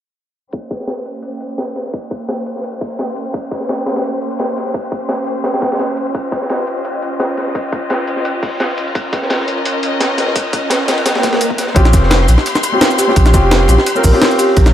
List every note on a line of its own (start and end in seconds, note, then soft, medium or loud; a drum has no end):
0.53 6.11 A#3 medium
0.53 8.91 C#4 medium
0.53 8.91 G4 medium
0.53 8.91 C5 medium
0.53 kick loud
0.53 closed hi-hat medium
0.53 ride medium
0.70 kick loud
0.70 snare soft
0.70 closed hi-hat medium
0.70 ride medium
0.80 snare soft
0.87 snare loud
0.87 closed hi-hat medium
0.87 ride medium
0.97 snare soft
1.05 closed hi-hat medium
1.05 ride medium
1.15 ride soft
1.22 closed hi-hat medium
1.22 ride medium
1.40 closed hi-hat medium
1.40 ride medium
1.58 snare loud
1.58 closed hi-hat medium
1.58 ride medium
1.76 snare soft
1.76 closed hi-hat medium
1.76 ride medium
1.86 snare soft
1.93 kick loud
1.93 closed hi-hat medium
1.93 ride medium
2.11 kick loud
2.11 closed hi-hat medium
2.11 ride medium
2.28 snare loud
2.28 closed hi-hat medium
2.28 ride medium
2.46 closed hi-hat medium
2.46 ride medium
2.56 snare soft
2.63 closed hi-hat medium
2.63 ride medium
2.81 kick loud
2.81 closed hi-hat medium
2.81 open hi-hat medium
2.99 snare loud
2.99 closed hi-hat medium
2.99 ride medium
3.16 closed hi-hat medium
3.16 ride medium
3.25 ride soft
3.34 kick loud
3.34 closed hi-hat medium
3.34 ride medium
3.51 kick loud
3.51 snare soft
3.51 closed hi-hat medium
3.51 ride medium
3.60 snare soft
3.69 snare loud
3.69 closed hi-hat medium
3.69 ride medium
3.78 snare soft
3.86 snare loud
3.86 closed hi-hat medium
3.86 ride medium
3.96 snare medium
3.96 ride medium
4.04 closed hi-hat medium
4.04 ride medium
4.22 closed hi-hat medium
4.31 ride medium
4.39 snare loud
4.39 closed hi-hat medium
4.39 ride medium
4.56 snare soft
4.56 closed hi-hat medium
4.56 ride medium
4.66 snare soft
4.74 kick loud
4.74 closed hi-hat medium
4.74 ride medium
4.92 kick loud
4.92 closed hi-hat medium
4.92 ride medium
5.09 snare loud
5.09 closed hi-hat medium
5.09 ride medium
5.27 closed hi-hat medium
5.27 ride medium
5.44 snare medium
5.44 closed hi-hat medium
5.44 ride medium
5.54 snare medium
5.54 ride medium
5.62 kick loud
5.62 snare medium
5.62 closed hi-hat medium
5.62 ride medium
5.72 snare loud
5.72 ride medium
5.79 snare loud
5.79 closed hi-hat medium
5.79 ride medium
5.97 closed hi-hat medium
5.97 ride medium
6.06 ride soft
6.14 11.72 F4 medium
6.14 8.93 D#5 medium
6.14 kick loud
6.14 closed hi-hat medium
6.14 ride medium
6.31 kick loud
6.31 snare soft
6.31 closed hi-hat medium
6.31 ride medium
6.42 snare soft
6.49 snare loud
6.49 closed hi-hat medium
6.49 ride medium
6.59 snare soft
6.67 closed hi-hat medium
6.67 ride medium
6.77 ride soft
6.84 closed hi-hat medium
6.84 ride medium
7.02 closed hi-hat medium
7.02 ride medium
7.20 snare loud
7.20 closed hi-hat medium
7.20 ride medium
7.37 snare soft
7.37 closed hi-hat medium
7.37 ride medium
7.47 snare soft
7.55 kick loud
7.55 closed hi-hat medium
7.55 ride medium
7.72 kick loud
7.72 closed hi-hat medium
7.72 ride medium
7.90 snare loud
7.90 closed hi-hat medium
7.90 ride medium
8.07 closed hi-hat medium
8.07 ride medium
8.16 snare soft
8.25 closed hi-hat medium
8.25 ride medium
8.43 kick medium
8.43 closed hi-hat medium
8.43 open hi-hat medium
8.60 snare loud
8.60 closed hi-hat medium
8.60 ride medium
8.78 closed hi-hat medium
8.78 ride medium
8.87 ride soft
8.95 11.73 C#4 medium
8.95 11.73 A#4 medium
8.95 11.73 D#5 medium
8.95 kick loud
8.95 closed hi-hat medium
8.95 ride medium
9.12 kick medium
9.12 snare soft
9.12 closed hi-hat medium
9.12 ride medium
9.22 snare soft
9.30 snare loud
9.30 closed hi-hat medium
9.30 ride medium
9.40 snare soft
9.48 closed hi-hat medium
9.48 ride medium
9.57 ride soft
9.65 closed hi-hat medium
9.65 ride medium
9.83 closed hi-hat medium
9.83 ride medium
10.00 snare loud
10.00 closed hi-hat medium
10.00 ride medium
10.18 snare medium
10.18 closed hi-hat medium
10.18 ride medium
10.27 snare soft
10.35 kick loud
10.35 closed hi-hat medium
10.35 ride medium
10.53 kick loud
10.53 closed hi-hat medium
10.53 ride medium
10.70 snare loud
10.70 closed hi-hat medium
10.70 ride medium
10.88 snare loud
10.88 closed hi-hat medium
10.88 ride medium
10.98 ride medium
11.05 snare loud
11.05 closed hi-hat medium
11.05 ride medium
11.05 swell medium
11.15 snare loud
11.15 ride medium
11.23 kick medium
11.23 snare medium
11.23 closed hi-hat medium
11.23 ride medium
11.32 snare loud
11.32 ride medium
11.41 closed hi-hat medium
11.41 ride medium
11.50 kick medium
11.58 snare soft
11.58 closed hi-hat medium
11.58 ride medium
11.67 snare soft
11.75 11.95 A#1 loud
11.75 12.28 C4 loud
11.75 12.28 C#4 medium
11.75 12.29 F4 medium
11.75 14.73 G4 medium
11.75 12.29 G4 loud
11.75 14.54 C6 medium
11.75 kick loud
11.75 closed hi-hat medium
11.75 ride medium
11.85 snare soft
11.85 cabasa soft
11.93 12.27 F1 loud
11.93 kick loud
11.93 snare soft
11.93 closed hi-hat medium
11.93 ride medium
11.93 cabasa medium
12.03 snare soft
12.11 snare loud
12.11 closed hi-hat medium
12.11 ride medium
12.21 snare soft
12.28 12.37 A#1 medium
12.28 closed hi-hat medium
12.28 ride medium
12.28 cabasa medium
12.38 snare soft
12.38 ride soft
12.46 closed hi-hat loud
12.46 ride loud
12.55 snare soft
12.55 cabasa soft
12.63 closed hi-hat medium
12.63 ride medium
12.63 cabasa medium
12.72 13.06 C4 medium
12.72 13.06 C#4 medium
12.72 13.06 F4 medium
12.72 13.06 G4 medium
12.81 snare loud
12.81 closed hi-hat medium
12.81 ride medium
12.91 cabasa soft
12.98 13.20 G4 medium
12.98 snare soft
12.98 closed hi-hat medium
12.98 ride medium
12.98 cabasa medium
13.08 13.32 C4 medium
13.08 13.32 C#4 medium
13.08 13.32 F4 medium
13.08 13.32 G4 medium
13.08 snare soft
13.16 13.35 A#1 loud
13.16 kick loud
13.16 closed hi-hat medium
13.16 ride medium
13.26 snare medium
13.26 cabasa soft
13.33 13.68 F1 loud
13.33 13.67 C4 loud
13.33 13.67 C#4 medium
13.33 13.67 F4 medium
13.33 13.67 G4 loud
13.33 kick loud
13.33 closed hi-hat medium
13.33 ride medium
13.33 cabasa medium
13.44 13.64 G4 medium
13.51 snare loud
13.51 closed hi-hat medium
13.51 ride medium
13.68 13.77 A#1 medium
13.68 13.75 C4 medium
13.68 13.75 C#4 medium
13.68 13.75 F4 medium
13.68 13.76 G4 loud
13.68 closed hi-hat medium
13.68 ride medium
13.68 cabasa medium
13.78 snare soft
13.86 closed hi-hat medium
13.86 ride loud
13.95 14.11 C4 medium
13.95 14.11 C#4 medium
13.95 14.11 F4 medium
13.95 14.12 A#4 loud
13.95 cabasa soft
14.04 14.13 A#1 loud
14.04 14.25 A#4 medium
14.04 kick loud
14.04 closed hi-hat medium
14.04 open hi-hat medium
14.04 cabasa medium
14.12 14.73 C4 medium
14.12 14.73 C#4 medium
14.12 14.73 F4 medium
14.12 14.73 G4 loud
14.21 snare loud
14.21 closed hi-hat medium
14.21 ride medium
14.31 cabasa soft
14.39 14.73 G4 medium
14.39 closed hi-hat medium
14.39 ride medium
14.39 cabasa medium
14.49 ride soft
14.56 14.73 A#1 loud
14.56 14.73 A#5 medium
14.56 kick loud
14.56 closed hi-hat medium
14.56 ride medium
14.66 snare medium
14.66 cabasa soft